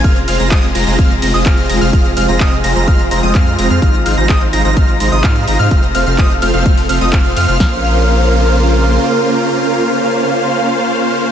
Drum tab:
HH |xxoxxxoxxxo-xxox|xxoxxxoxxxoxxxox|xxoxxxoxxxoxxxox|xxoxxxoxxooxxxox|
SH |xxxxx-xxxxxxxxxx|xxxxx-xxxxxxxxxx|xxxxx-xxxxxxxxxx|xxxxxxxxxxxxxxxx|
CP |----x-------x---|----x-------x---|----x-------x---|----x-------x---|
SD |----------------|----------------|----------------|----------------|
BD |o---o---o---o---|o---o---o---o---|o---o---o---o---|o---o---o---o---|

HH |----------------|----------------|
SH |----------------|----------------|
CP |----------------|----------------|
SD |o---------------|----------------|
BD |o---------------|----------------|